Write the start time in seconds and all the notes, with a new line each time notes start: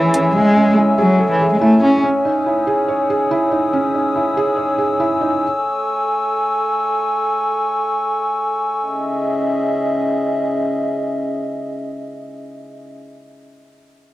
Already playing: E3 A3 C#4 E4 G#4 A4 C#5 E5 G#5 E6
0.14 C#4, closed hi-hat
0.35 G#3
0.56 C#4
0.77 E4
0.98 F#3 G#4
1.20 A4
1.31 E3
1.41 G#4
1.52 G#3
1.61 A3 E4
1.83 C#4
2.04 C#4 D#6 E6
2.25 D#4
2.46 E4
2.67 G#4
2.88 C#5
3.10 G#4
3.31 E4
3.51 D#4
3.73 C#4
3.94 D#4
4.16 E4
4.37 G#4
4.57 C#5
4.78 G#4
5.00 E4
5.21 D#4
5.42 A4 G#5 C#6
8.80 C#4 G#4 D#5 E5